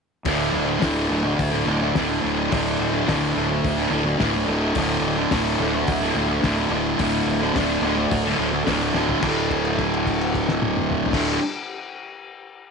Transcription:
0.25 D1 D2 A2 D3, kick, open hi-hat
0.53 D1
0.66 A2 D3
0.80 D1 D2 A2 D3, kick, snare, open hi-hat
1.09 D1 D2 A2 D3
1.23 muted distorted electric guitar stroke
1.39 D1, kick, open hi-hat
1.52 A2 D3
1.66 D1 D2 A2 D3
1.82 muted distorted electric guitar stroke
1.95 D1 D2 A2 D3, kick, snare, open hi-hat
2.09 A2 D3
2.22 D1 D2 A2 D3
2.50 D1 D2 A2 D3, kick, open hi-hat
2.80 D1
2.92 A2 D3
3.06 D1 D2 A2 D3, kick, snare, open hi-hat
3.34 D1 D2 A2 D3
3.50 muted distorted electric guitar stroke
3.64 D1, kick, open hi-hat
3.76 A2 D3
3.91 D1 D2 A2 D3
4.05 muted distorted electric guitar stroke
4.18 D1 D2 A2 D3, kick, snare, open hi-hat
4.32 A2 D3
4.47 D1 D2 A2 D3
4.75 D1 D2 A2 D3, kick, open hi-hat
5.01 D1
5.18 A2 D3
5.31 D1 D2 A2 D3, kick, snare, open hi-hat
5.59 D1 D2 A2 D3
5.74 muted distorted electric guitar stroke
5.87 D1, kick, open hi-hat
6.01 A2 D3
6.14 D1 D2 A2 D3
6.28 muted distorted electric guitar stroke
6.42 D1 D2 A2 D3, kick, snare, open hi-hat
6.56 A2 D3
6.70 D1 D2 A2 D3
6.98 D1 D2 A2, kick, open hi-hat
7.02 D3
7.26 D1
7.41 A2 D3
7.55 D1 D2 A2 D3, kick, snare, open hi-hat
7.81 D1 D2 A2
7.87 D3
7.97 muted distorted electric guitar stroke
8.11 D1, kick, open hi-hat
8.25 A2 D3
8.38 D1 D2 A2 D3
8.53 muted distorted electric guitar stroke
8.65 D1 D2 A2, kick, snare, open hi-hat
8.69 D3
8.79 A2 D3
8.94 D1 D2 A2 D3, snare
9.09 floor tom
9.21 D1 D2 A2, kick, crash
9.26 D3
9.51 kick, crash
9.65 crash
9.79 kick, crash
9.94 crash
10.07 kick, crash
10.21 crash
10.34 kick, crash
10.48 snare
10.62 high tom
10.77 mid tom
10.91 mid tom
11.06 floor tom
11.11 D1 D2 A2 D3, kick, snare, crash

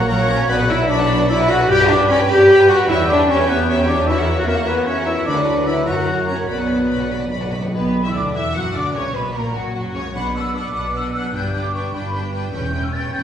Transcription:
Already playing: A#1 A#2 A#3 C#4 F#4 C#5
0.00 F#5
0.07 F#3 F#4 A#4 C#5 F#5 A#5
0.18 F#4 C#5 F#5 A#5
0.28 C#4 A#4 C#5 F#5 A#5
0.38 A#3 C#5 F#5 A#5
0.48 B1 B2 F#3 B3 F#4 B4 D5 B5
0.58 B3 B4 F#5
0.68 D4 E4 F#4 D5 E5 B5
0.78 F#4 B4 F#5
0.88 D4 F#4 B4 D5 B5
0.98 B4 D5 F#5
1.08 F#4 D5 F#5 B5
1.18 B4 D5 F#5
1.28 E4 F#4 B4 D5 E5 B5
1.38 F#4 B4 F#5
1.48 D4 F#4 D5 F#5 B5
1.59 B3 B4 F#5
1.69 G2 G3 G4 B4 D5 G5 B5
1.79 B4 G5
1.89 D4 G4 D5 B5
1.99 G4 B4 G5
2.09 C#4 G4 B4 C#5 D5 B5
2.19 B4 D5 G5
2.29 G4 D5 G5 B5
2.40 B4 D5 G5
2.49 G4 B4 D5 B5
2.59 G4 B4 G5
2.69 D4 F#4 G4 D5 F#5 B5
2.79 B3 B4 G5
2.88 E2 E3 G3 E4 G4 B4 C#5 E5
2.99 C#4 B4 E5 G5
3.08 D4 G4 C#5 D5 E5
3.18 B4 E5 G5
3.28 C#4 G4 C#5 E5
3.38 B4 E5 G5
3.48 F#3 B3 G4 B4 C#5 E5 B5
3.58 B4 E5 G5
3.67 G4 C#5 E5
3.77 C#4 B4 C#5 E5 G5
3.87 D4 G4 C#5 D5 E5
3.98 C#4 B4 E5 G5
4.07 E3 E4 F#4 C#5 E5
4.18 C#4 A#4 E5 F#5
4.28 F#4 C#5 E5
4.37 F#4 A#4 E5 F#5
4.47 A#3 F#4 A#4 C#5 E5
4.57 A#4 E5 F#5
4.66 E3 B3 F#4 B4 C#5 E5 A#5
4.76 A#4 E5 F#5
4.86 C#4 F#4 C#5 E5
4.97 A#4 E5 F#5
5.06 E4 F#4 C#5 E5
5.17 C#4 A#4 E5 F#5
5.26 D2 D3 F#3 D4 F#4 B4 D5 B5
5.36 D4 B4 F#5
5.46 F#4 D5 B5
5.56 B4 F#5
5.66 E4 F#4 D5 E5 B5
5.76 B4 F#5
5.85 F#2 F#3 F#4 A#4 C#5 F#5 A#5
5.95 A#3 A#4 F#5
6.05 C#4 F#4 C#5 A#5
6.16 F#4 A#4 F#5
6.26 C#4 F#4 A#4 C#5 A#5
6.37 A#4 C#5 F#5
6.47 B1 B2 F#3 B3 F#4 B4 D5 B5
6.56 B2 B3 B4 F#5
6.65 B2 B5
6.70 B2 D4 F#4 D5
6.79 B2 F#4 B4 F#5
6.89 B2 F#4 B4 D5 B5
6.96 B2
7.00 B2 B4 D5 F#5
7.11 B2 F#4 D5 F#5 B5
7.20 B2 B4 D5 F#5
7.28 B2 B5
7.33 B2 F#4 B4 D5
7.42 B2 F#4 B4 F#5
7.51 B2 D4 F#4 D5 B5
7.59 B2 F#5
7.63 B2 B3 B4
7.74 B1 B2 B3 B4 B5
7.84 B3
7.95 D4
8.04 E3 E4 F#4 E5 E6
8.14 D2 D3 D4 B4 D5 D6
8.25 D5
8.34 E2 E3 E4 E5 F#5 E6
8.45 D5
8.54 F#2 F#3 F#4 B4 F#5 F#6
8.65 F#4
8.74 D2 D3 D4 D5 D6
8.85 B3
8.94 C#2 A#2 C#3 C#4 C#5 C#6
9.05 F#3
9.14 B1 B2 B3 C#4 B4 B5
9.25 F#4
9.34 A#1 A#2 A#3 C#4 A#4 A#5
9.44 C#5
9.54 F#1 F#2 F#3 F#4 F#5
9.64 C#5
9.74 F#1 F#2 F#3 F#4 F#5
9.85 C#4
9.94 C#2 C#3 F#3 C#4 C#5 C#6
10.04 A#3
10.13 B1 B2 D4 B4 F#5 B5
10.24 B3
10.34 D4 F#4 B4 F#5 E6
10.44 B3
10.54 D4 B4 F#5 D6
10.63 F#5
10.73 B1 B2 D4 B4 F#5
10.83 F#5
10.93 D4 B4 F#5 E6
11.03 F#4
11.13 B3 D4 B4 F#5 F#6
11.23 F#3
11.33 G1 G2 D4 B4 G5 G6
11.44 B3
11.53 D4 B4 G5 D6
11.63 G4
11.73 D4 B4 G5 C#6
11.84 D5
11.93 G1 G2 D4 B4 G5 B5
12.03 D5
12.13 D4 B4 G5
12.23 G4
12.33 D4 B4 G5
12.43 B3
12.52 E1 E2 C#4 B4 G5 G6
12.64 B3
12.73 C#4 B4 G5
12.83 G4 E6
12.92 C#4 B4 G5 A6
13.03 C#5
13.13 E1 E2 C#4 B4 G5 G6

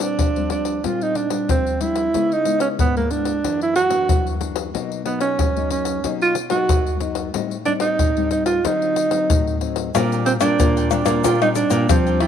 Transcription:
Already playing: A#2 G3 C4 D4
0.00 D4, pandeiro
0.19 F3, pandeiro, surdo
0.36 G3 C4 D4, pandeiro
0.50 D4, pandeiro
0.65 pandeiro
0.84 A#2 G3 C4 D4 F4, pandeiro, surdo
1.01 D#4, pandeiro
1.15 D4, pandeiro
1.30 G3 C4 D4, pandeiro
1.49 F3 C4, pandeiro, surdo
1.67 pandeiro
1.80 G3 C4 D4 E4, pandeiro
1.96 pandeiro
2.14 C#3 G#3 B3 E4, pandeiro, surdo
2.32 D#4, pandeiro
2.45 G#3 B3 E4, pandeiro
2.60 C#4, pandeiro
2.79 G#2 B3, pandeiro, surdo
2.96 G#3 A#3 B3 E4, pandeiro
3.11 D4, pandeiro
3.25 pandeiro
3.44 F#2 E3 A#3 D4, pandeiro, surdo
3.61 E4, pandeiro
3.76 F#4, pandeiro
3.90 E3 A#3 D4, pandeiro
4.09 F#2, pandeiro, surdo
4.27 pandeiro
4.40 E3 A#3 D4, pandeiro
4.56 pandeiro
4.74 B2 F#3 A#3 D#4, pandeiro, surdo
4.92 pandeiro
5.05 F#3 A#3 B3 D#4, pandeiro
5.20 C#4, pandeiro
5.39 F#2, pandeiro, surdo
5.56 F#3 A#3 D#4, pandeiro
5.70 C#4, pandeiro
5.85 pandeiro
6.04 B2 F#3 A#3 D#4, pandeiro, surdo
6.21 F4, pandeiro
6.35 pandeiro
6.50 F#3 A#3 D#4 F#4, pandeiro
6.69 F#2, pandeiro, surdo
6.87 pandeiro
7.00 F#3 A#3 D#4, pandeiro
7.15 pandeiro
7.34 A2 G3 C4 D#4, pandeiro, surdo
7.51 pandeiro
7.65 G3 C4 D4 D#4, pandeiro
7.80 D#4, pandeiro
7.99 A2, pandeiro, surdo
8.17 G3 C4 D#4, pandeiro
8.31 D#4, pandeiro
8.46 F4, pandeiro
8.65 D3 F#3 C4 D#4, pandeiro, surdo
8.82 pandeiro
8.96 pandeiro
9.11 F#3 C4 D#4, pandeiro
9.30 A2, pandeiro, surdo
9.47 pandeiro
9.61 F#3 C4 D#4, pandeiro
9.76 pandeiro
9.94 A#2 G3 C4 D4 A#4 D5 G5, pandeiro, tamborim, shaker, surdo
10.12 A#4 D5 G5, pandeiro, shaker
10.26 C4, muted cavaquinho stroke, pandeiro
10.41 A#2 G3 C4 D4 A#4 D5 G5, pandeiro, tamborim, shaker
10.59 A#2 F3, pandeiro, shaker, surdo
10.77 A#4 D5 G5, pandeiro, shaker
10.90 G3 C4 D4 A#4 D5 G5, pandeiro, tamborim, shaker
11.06 A#2 A#4 D5 G5, pandeiro, tamborim, shaker
11.24 A#2 D4 F4 A#4 D5 G5, pandeiro, shaker, surdo
11.42 G3 C4 D4 D#4 A#4 D5 G5, pandeiro, tamborim, shaker
11.55 D4, muted cavaquinho stroke, pandeiro, shaker
11.70 A#2 A#4 D5 G5, pandeiro, shaker
11.89 F3 G3 C4 D4, pandeiro, tamborim, shaker, surdo
12.06 A#4 D5 G5, pandeiro, shaker
12.20 D4 E4 A#4 D5 G5, pandeiro, tamborim

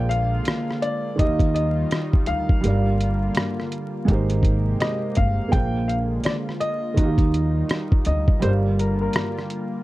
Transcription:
Already playing: A#1 D3 G#3 A#3 F4 G#4 C5 D5
0.09 F5, closed hi-hat
0.45 cross-stick, closed hi-hat
0.71 cross-stick
0.82 D5, closed hi-hat
1.16 D#2 D#3 G3 D#4 F4 D#5, kick, closed hi-hat
1.20 G4 D#5
1.25 F5
1.39 kick, closed hi-hat
1.54 D#5, closed hi-hat
1.91 cross-stick, closed hi-hat
2.13 kick
2.26 D2 F5, closed hi-hat
2.49 kick
2.61 G1 D3 G3 A#3 F4 G4, closed hi-hat
2.65 A#4 D5
2.70 F5
3.01 closed hi-hat
3.35 cross-stick, closed hi-hat
3.60 cross-stick
3.72 closed hi-hat
4.05 G#1 C3 G#3 A#3 D#4 G4, kick, closed hi-hat
4.09 G4 A#4
4.14 C5
4.30 closed hi-hat
4.43 kick, closed hi-hat
4.80 D#5, cross-stick, closed hi-hat
5.15 G1 F5, kick, closed hi-hat
5.48 A#3 F4 G5
5.53 A#1 D3 F4 G#4 C5, kick, closed hi-hat
5.57 F5
5.88 F5, closed hi-hat
6.24 D5, cross-stick, closed hi-hat
6.49 cross-stick
6.60 D#5, closed hi-hat
6.94 D#2 D#3 G3 D#4, kick, closed hi-hat
6.99 F#4 D#5
7.03 G4 F5
7.18 kick, closed hi-hat
7.34 closed hi-hat
7.69 cross-stick, closed hi-hat
7.92 kick
8.05 D2 D#5, closed hi-hat
8.28 kick
8.40 G1 D3 G3 A#3 F4 G4 C5, closed hi-hat
8.44 A#4 D5
8.49 F5
8.79 A#4, closed hi-hat
9.01 A#4
9.13 cross-stick, closed hi-hat
9.38 cross-stick
9.50 closed hi-hat

